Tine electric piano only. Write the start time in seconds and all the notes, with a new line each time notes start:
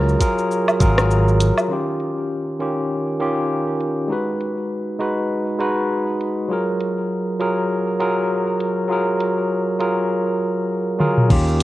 Already playing: F#3 F4 G#4 A#4
0.20 F#3 F4 G#4 A#4
0.80 F#3 F4 G#4 A#4
1.68 D#3 C#4 F4
1.73 G4
2.59 D#3 C#4 F4 G4
3.19 D#3 C#4 F4 G4
4.08 G#3 D#4 F#4
4.12 B4
4.99 G#3 D#4 F#4 B4
5.59 G#3 D#4 F#4 B4
6.48 F#3 F4 G#4
6.53 A#4
7.39 F#3 F4 G#4 A#4
7.99 F#3 F4 G#4 A#4
8.88 F#3 F4 G#4
8.92 A#4
9.79 F#3 F4 G#4 A#4
10.99 F#3 F4 G#4 A#4
11.28 D#3 C#4 F4
11.32 G4